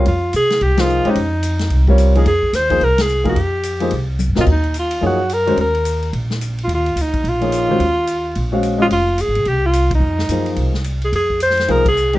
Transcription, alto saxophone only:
X:1
M:4/4
L:1/8
Q:"Swing" 1/4=216
K:Ebmix
V:1 name="Alto saxophone"
F2 A2 G F2 E- | E4- E z2 A | A2 c2 B A2 G- | G4- G z2 F |
E2 F2 _G2 B2 | B4 z3 F | F2 E2 F4- | F6 z F |
F2 A2 G F2 E- | E4- E z2 A | A2 c2 B A2 G |]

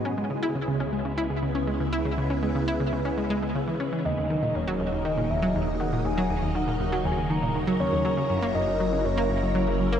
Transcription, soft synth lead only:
X:1
M:4/4
L:1/8
Q:1/4=120
K:D#phr
V:1 name="Soft synth lead"
z8 | z8 | d2 c2 d e z f | g2 f2 g a z c- |
c2 d2 c4 |]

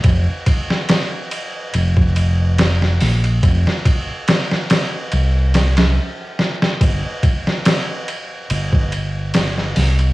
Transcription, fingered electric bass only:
X:1
M:4/4
L:1/8
Q:"Swing 16ths" 1/4=71
K:Fmix
V:1 name="Fingered electric bass" clef=bass
F,,, z3 F,,,3 B,,, | F,,, z3 C,,2 z2 | G,,, z3 G,,,3 C,, |]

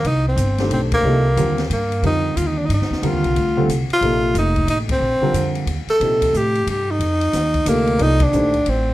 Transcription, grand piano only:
X:1
M:3/4
L:1/8
Q:"Swing" 1/4=181
K:Fmix
V:1 name="Grand piano"
z3 [E,A,DGc]3 | [C,F,B,EA] z [D,G,CFB] z3 | [D,G,CFB]4- [D,G,CFB] z | [D,G,CFB]3 [D,G,CFA] z2 |
[C,F,B,EA]4- [C,F,B,EA] z | z [D,G,CFB]3 z2 | [C,F,CEA]4- [C,F,CEA] z | z4 [C,F,B,EA]2 |
[F,B,EAd] z [E,A,DGc] z3 |]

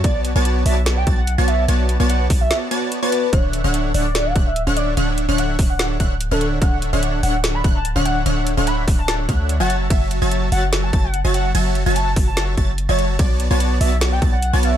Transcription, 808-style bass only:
X:1
M:4/4
L:1/16
Q:"Swing 16ths" 1/4=146
K:D
V:1 name="808-style bass" clef=bass
B,,,3 B,,,3 B,,,4 B,,,3 B,,,3 | B,,,3 B,,,3 B,,,2 z8 | D,,,3 D,,,3 D,,,4 D,,,3 D,,,3 | D,,,3 D,,,3 D,,,4 D,,,3 D,,,3 |
D,,,3 D,,,3 D,,,4 D,,,3 D,,,3 | D,,,3 D,,,3 D,,,4 D,,3 F,,,3 | F,,,3 F,,,3 F,,,4 F,,,3 F,,,3 | F,,,3 F,,,3 F,,,4 F,,,3 F,,,3 |
B,,,3 B,,,3 B,,,4 B,,,3 B,,,3 |]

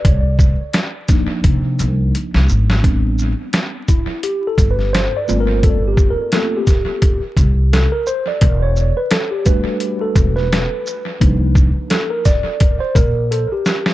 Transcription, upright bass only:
X:1
M:4/4
L:1/16
Q:"Swing 16ths" 1/4=86
K:C
V:1 name="Upright bass" clef=bass
C,,3 z4 z C,2 C,,2 z C,, ^G,,,2 | A,,,3 z6 z G,,,3 z G,,,2- | G,,,3 z6 z C,,3 z3 | E,,,3 z6 z E,,,3 z3 |
C,,3 z6 z _B,,,3 z3 |]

